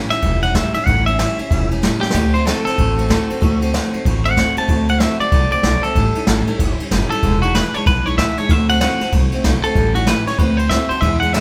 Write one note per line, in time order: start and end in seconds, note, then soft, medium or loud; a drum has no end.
0.00 0.12 A2 medium
0.00 0.12 E3 medium
0.00 0.12 G3 loud
0.00 0.11 C#4 loud
0.10 0.22 G3 soft
0.10 0.22 C#4 medium
0.10 0.23 E4 medium
0.10 0.42 E5 medium
0.10 muted upright bass stroke medium
0.10 snare soft
0.10 ride medium
0.22 0.59 E1 medium
0.22 0.43 E3 medium
0.22 0.43 G3 medium
0.22 0.43 C#4 medium
0.22 0.41 E4 medium
0.22 kick loud
0.22 ride medium
0.42 0.54 G3 soft
0.42 0.54 C#4 soft
0.42 0.55 E4 medium
0.42 0.55 F#5 medium
0.42 ride medium
0.55 0.75 A2 medium
0.55 0.75 E3 medium
0.55 0.75 G3 medium
0.55 0.75 C#4 medium
0.55 0.74 E4 medium
0.55 0.73 E5 medium
0.55 kick medium
0.55 snare loud
0.55 ride medium
0.74 0.87 G3 medium
0.74 0.88 C#4 soft
0.74 0.88 E4 medium
0.74 0.86 E5 medium
0.74 muted upright bass stroke medium
0.74 ride medium
0.86 1.23 A1 medium
0.86 1.07 A2 medium
0.86 1.08 E3 medium
0.86 1.08 G3 medium
0.86 1.07 C#4 medium
0.86 1.06 E4 medium
0.86 1.06 F#5 medium
0.86 kick loud
0.86 ride medium
1.06 1.19 G3 soft
1.06 1.19 C#4 medium
1.06 1.19 E4 medium
1.06 1.69 E5 loud
1.06 ride medium
1.19 1.39 A2 medium
1.19 1.39 E3 medium
1.19 1.39 G3 medium
1.19 1.39 C#4 medium
1.19 1.37 E4 medium
1.19 snare loud
1.19 ride medium
1.38 1.50 G3 soft
1.38 1.51 C#4 soft
1.38 1.51 E4 soft
1.38 muted upright bass stroke medium
1.38 ride medium
1.50 1.87 E1 medium
1.50 1.70 E3 medium
1.50 1.71 G3 medium
1.50 1.71 C#4 medium
1.50 1.69 E4 medium
1.50 kick loud
1.50 ride medium
1.70 1.82 G3 soft
1.70 1.82 C#4 medium
1.70 1.82 E4 medium
1.70 ride medium
1.82 2.02 A2 medium
1.82 2.03 E3 medium
1.82 2.03 G3 loud
1.82 2.01 C#4 loud
1.82 2.00 E4 medium
1.82 snare loud
1.82 ride medium
2.01 2.14 G3 soft
2.01 2.15 C#4 medium
2.01 2.14 E4 medium
2.01 2.33 G4 loud
2.01 muted upright bass stroke medium
2.01 snare medium
2.10 2.51 D2 loud
2.10 2.34 D3 medium
2.10 snare loud
2.10 crash medium
2.10 ride medium
2.14 2.34 A3 medium
2.14 2.33 C4 medium
2.14 2.32 F#4 medium
2.14 kick loud
2.33 2.45 A3 soft
2.33 2.45 C4 medium
2.33 2.46 F#4 medium
2.33 2.46 C5 medium
2.33 ride medium
2.45 2.66 D3 medium
2.45 2.66 A3 medium
2.45 2.65 C4 medium
2.45 2.64 F#4 medium
2.45 2.64 A4 medium
2.45 snare loud
2.45 ride medium
2.65 2.77 A3 soft
2.65 2.77 C4 soft
2.65 2.78 F#4 medium
2.65 3.58 A4 loud
2.65 muted upright bass stroke medium
2.65 snare soft
2.65 ride medium
2.77 3.14 A1 medium
2.77 2.97 D3 medium
2.77 2.98 A3 medium
2.77 2.97 C4 medium
2.77 2.96 F#4 medium
2.77 kick loud
2.77 ride medium
2.97 3.08 A3 soft
2.97 3.09 C4 medium
2.97 3.09 F#4 medium
2.97 ride medium
3.09 3.29 D3 medium
3.09 3.29 A3 medium
3.09 3.28 C4 medium
3.09 3.27 F#4 loud
3.09 kick medium
3.09 snare loud
3.09 ride medium
3.28 3.40 A3 medium
3.28 3.40 C4 medium
3.28 3.41 F#4 medium
3.28 muted upright bass stroke medium
3.28 ride medium
3.41 3.78 D2 loud
3.41 3.61 D3 medium
3.41 3.61 A3 loud
3.41 3.60 C4 medium
3.41 3.59 F#4 loud
3.41 kick loud
3.41 ride medium
3.60 3.73 A3 medium
3.60 3.73 C4 medium
3.60 3.73 F#4 medium
3.60 ride medium
3.73 3.93 D3 medium
3.73 3.94 A3 loud
3.73 3.93 C4 loud
3.73 3.92 F#4 loud
3.73 snare loud
3.73 ride medium
3.93 4.05 A3 soft
3.93 4.06 C4 medium
3.93 4.05 F#4 medium
3.93 muted upright bass stroke medium
3.93 ride medium
4.05 4.42 A1 medium
4.05 4.25 D3 medium
4.05 4.26 A3 medium
4.05 4.24 C4 medium
4.05 4.23 F#4 medium
4.05 kick loud
4.05 ride medium
4.24 4.36 A3 soft
4.24 4.37 C4 soft
4.24 4.37 F#4 medium
4.24 4.56 F#5 loud
4.24 ride medium
4.36 4.57 D3 medium
4.36 4.57 A3 medium
4.36 4.57 C4 medium
4.36 4.56 F#4 medium
4.36 kick medium
4.36 snare loud
4.36 ride medium
4.56 4.68 A3 soft
4.56 4.68 C4 medium
4.56 4.69 F#4 medium
4.56 4.89 A5 loud
4.56 muted upright bass stroke medium
4.56 ride medium
4.68 5.05 D2 medium
4.68 4.88 D3 medium
4.68 4.89 A3 medium
4.68 4.88 C4 medium
4.68 4.87 F#4 medium
4.68 kick loud
4.68 ride medium
4.88 5.00 A3 soft
4.88 5.00 C4 medium
4.88 5.01 F#4 medium
4.88 5.01 F#5 medium
4.88 ride medium
5.00 5.20 D3 medium
5.00 5.21 A3 medium
5.00 5.20 C4 medium
5.00 5.20 F#4 loud
5.00 5.20 E5 medium
5.00 snare loud
5.00 ride medium
5.19 5.31 A3 soft
5.19 5.32 C4 soft
5.19 5.33 F#4 medium
5.19 5.51 D5 loud
5.19 muted upright bass stroke medium
5.19 ride medium
5.32 5.49 C2 medium
5.32 5.52 D3 medium
5.32 5.52 A3 medium
5.32 5.51 C4 medium
5.32 5.50 F#4 medium
5.32 kick loud
5.32 ride medium
5.50 5.63 A3 soft
5.50 5.64 C4 soft
5.50 5.64 F#4 medium
5.50 5.83 D5 loud
5.50 muted upright bass stroke medium
5.50 ride medium
5.63 5.80 B1 medium
5.63 5.84 D3 medium
5.63 5.84 A3 medium
5.63 5.84 C4 medium
5.63 5.82 F#4 loud
5.63 kick medium
5.63 snare loud
5.63 ride medium
5.83 5.96 A3 soft
5.83 5.96 C4 soft
5.83 5.96 F#4 medium
5.83 6.76 A4 loud
5.83 muted upright bass stroke medium
5.83 ride medium
5.95 6.09 A1 medium
5.95 6.16 A2 medium
5.95 6.16 E3 medium
5.95 6.16 G3 medium
5.95 6.16 C#4 medium
5.95 6.15 E4 medium
5.95 kick loud
5.95 ride medium
6.15 6.28 G3 soft
6.15 6.28 C#4 medium
6.15 6.28 E4 medium
6.15 ride medium
6.27 6.44 A1 medium
6.27 6.48 A2 medium
6.27 6.48 E3 medium
6.27 6.48 G3 medium
6.27 6.48 C#4 loud
6.27 6.47 E4 loud
6.27 snare loud
6.27 ride medium
6.47 6.60 G3 medium
6.47 6.60 C#4 medium
6.47 6.60 E4 medium
6.47 muted upright bass stroke medium
6.47 ride medium
6.59 6.76 G1 medium
6.59 6.80 E3 medium
6.59 6.80 G3 medium
6.59 6.80 C#4 medium
6.59 6.79 E4 medium
6.59 kick loud
6.59 ride loud
6.79 6.91 G3 soft
6.79 6.91 C#4 medium
6.79 6.92 E4 medium
6.79 muted upright bass stroke medium
6.79 ride medium
6.91 7.08 F#1 medium
6.91 7.11 A2 loud
6.91 7.11 E3 medium
6.91 7.11 G3 medium
6.91 7.11 C#4 loud
6.91 7.10 E4 medium
6.91 snare loud
6.91 ride medium
7.10 7.23 G3 soft
7.10 7.24 C#4 medium
7.10 7.23 E4 medium
7.10 7.41 A4 medium
7.10 muted upright bass stroke medium
7.10 ride medium
7.23 7.59 E1 loud
7.23 7.42 E2 medium
7.23 7.43 B2 medium
7.23 7.43 E3 medium
7.23 7.43 G#3 medium
7.23 7.42 D4 medium
7.23 7.42 E4 loud
7.23 kick loud
7.23 ride medium
7.42 7.54 E3 soft
7.42 7.54 G#3 medium
7.42 7.55 D4 soft
7.42 7.55 E4 medium
7.42 7.54 F#4 loud
7.42 ride medium
7.55 7.74 E2 medium
7.55 7.74 B2 medium
7.55 7.75 E3 medium
7.55 7.75 G#3 medium
7.55 7.74 D4 medium
7.55 7.73 E4 medium
7.55 7.74 B4 medium
7.55 snare loud
7.55 ride medium
7.74 7.85 E3 soft
7.74 7.86 G#3 soft
7.74 7.87 D4 medium
7.74 7.87 E4 medium
7.74 7.86 C#5 loud
7.74 muted upright bass stroke medium
7.74 ride medium
7.86 8.22 B1 medium
7.86 8.06 E3 medium
7.86 8.06 G#3 medium
7.86 8.06 D4 medium
7.86 8.05 E4 medium
7.86 8.06 B4 loud
7.86 kick loud
7.86 ride medium
8.06 8.18 E3 soft
8.06 8.19 G#3 soft
8.06 8.19 D4 medium
8.06 8.18 E4 medium
8.06 8.17 C#5 medium
8.06 ride medium
8.18 8.38 E2 medium
8.18 8.38 B2 medium
8.18 8.38 E3 medium
8.18 8.38 G#3 medium
8.18 8.38 D4 medium
8.18 8.36 E4 medium
8.18 8.38 E5 loud
8.18 kick medium
8.18 snare loud
8.18 ride medium
8.37 8.49 E3 soft
8.37 8.50 G#3 medium
8.37 8.50 D4 medium
8.37 8.50 E4 medium
8.37 8.51 C#5 medium
8.37 muted upright bass stroke medium
8.37 ride medium
8.49 8.85 D2 loud
8.49 8.69 D3 medium
8.49 8.69 A3 medium
8.49 8.68 C4 medium
8.49 8.67 F#4 medium
8.49 8.69 E5 loud
8.49 kick loud
8.49 ride medium
8.69 8.80 A3 soft
8.69 8.81 C4 soft
8.69 8.81 F#4 soft
8.69 8.80 F#5 loud
8.69 ride medium
8.81 9.01 D3 medium
8.81 9.01 A3 medium
8.81 9.01 C4 medium
8.81 8.99 F#4 medium
8.81 9.12 F#5 loud
8.81 snare loud
8.81 ride medium
9.01 9.12 A3 soft
9.01 9.13 C4 medium
9.01 9.13 F#4 medium
9.01 muted upright bass stroke medium
9.01 snare soft
9.01 ride medium
9.12 9.29 C2 medium
9.12 9.32 D3 medium
9.12 9.33 A3 medium
9.12 9.33 C4 medium
9.12 9.31 F#4 medium
9.12 kick loud
9.12 ride loud
9.32 9.44 A3 medium
9.32 9.44 C4 medium
9.32 9.45 F#4 medium
9.32 muted upright bass stroke medium
9.32 ride medium
9.44 9.61 B1 medium
9.44 9.64 D3 medium
9.44 9.64 A3 loud
9.44 9.63 C4 loud
9.44 9.62 F#4 loud
9.44 kick medium
9.44 snare loud
9.44 ride medium
9.63 9.76 A3 soft
9.63 9.77 C4 medium
9.63 9.76 F#4 medium
9.63 9.95 A4 loud
9.63 muted upright bass stroke medium
9.63 ride medium
9.75 10.11 A1 loud
9.75 9.95 A2 medium
9.75 9.96 E3 medium
9.75 9.96 G3 medium
9.75 9.95 C#4 medium
9.75 9.94 E4 medium
9.75 kick loud
9.75 ride medium
9.95 10.06 G3 soft
9.95 10.07 C#4 medium
9.95 10.07 E4 medium
9.95 10.07 F#4 medium
9.95 ride medium
10.07 10.27 A2 medium
10.07 10.27 E3 medium
10.07 10.27 G3 medium
10.07 10.26 C#4 loud
10.07 10.25 E4 medium
10.07 10.27 B4 medium
10.07 snare loud
10.07 ride medium
10.26 10.39 G3 soft
10.26 10.39 C#4 medium
10.26 10.39 E4 medium
10.26 10.38 C#5 medium
10.26 muted upright bass stroke medium
10.26 snare soft
10.26 ride medium
10.38 10.75 D2 medium
10.38 10.58 D3 medium
10.38 10.59 A3 medium
10.38 10.58 C4 medium
10.38 10.57 F#4 medium
10.38 10.57 B4 medium
10.38 kick loud
10.38 ride medium
10.57 10.69 A3 soft
10.57 10.70 C4 medium
10.57 10.71 F#4 medium
10.57 10.70 C5 medium
10.57 ride medium
10.70 10.90 D3 medium
10.70 10.90 A3 medium
10.70 10.89 C4 medium
10.70 10.88 F#4 medium
10.70 10.89 E5 medium
10.70 kick medium
10.70 snare loud
10.70 ride medium
10.89 11.02 A3 medium
10.89 11.02 C4 medium
10.89 11.02 F#4 medium
10.89 11.02 C5 loud
10.89 muted upright bass stroke medium
10.89 ride medium
11.01 11.22 E2 medium
11.01 11.38 E2 loud
11.01 11.22 B2 medium
11.01 11.22 E3 medium
11.01 11.21 G#3 medium
11.01 11.20 D4 medium
11.01 11.19 E4 loud
11.01 11.20 E5 loud
11.01 kick loud
11.01 ride medium
11.20 11.33 E3 soft
11.20 11.33 G#3 medium
11.20 11.34 D4 soft
11.20 11.34 E4 medium
11.20 11.33 F#5 loud
11.20 ride medium
11.33 11.40 E2 medium
11.33 11.40 B2 medium
11.33 11.40 E3 medium
11.33 11.40 G#3 loud
11.33 11.40 D4 medium
11.33 11.40 E4 medium
11.33 11.40 E5 loud
11.33 snare loud
11.33 ride medium